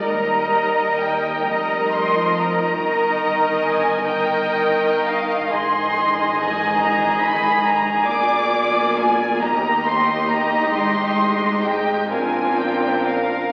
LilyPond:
<<
  \new Staff \with { instrumentName = "Violin section" } { \time 6/8 \key ees \major \tempo 4. = 45 bes''4 g''8 bes''8 c'''8 bes''8~ | bes''4 aes''8 g''4 f''8 | c'''4 aes''8 bes''8 ces'''8 bes''8 | d'''4 aes''8 bes''8 c'''8 bes''8 |
c'''4 g''8 aes''8 g''8 f''8 | }
  \new Staff \with { instrumentName = "Violin section" } { \time 6/8 \key ees \major << { ees''4. ees''4. | ees''4. ees''4. | ees''2. | d''4. ees''4.~ |
ees''4. bes'4. | } \\ { bes'4. bes'4. | bes'4. bes'4. | aes'2.~ | aes'4. g'4.~ |
g'4. f'4. | } >> }
  \new Staff \with { instrumentName = "Viola section" } { \time 6/8 \key ees \major << { ees'4. ees'4. | ees'4. ees'4. | ees'2. | f'4. ees'4.~ |
ees'4. d'4. | } \\ { g4. g8. f8. | ees4. ees4. | ees2. | bes2. |
aes4. c'4. | } >> }
  \new Staff \with { instrumentName = "Cello section" } { \clef bass \time 6/8 \key ees \major ees,4. f,4. | g,2. | aes,2. | bes,4. ees,4. |
aes,4. bes,4. | }
  \new Staff \with { instrumentName = "Double bass section" } { \clef bass \time 6/8 \key ees \major ees,4. f,,4. | g,,2. | aes,,2. | bes,,4. ees,4. |
aes,,4. bes,,4. | }
>>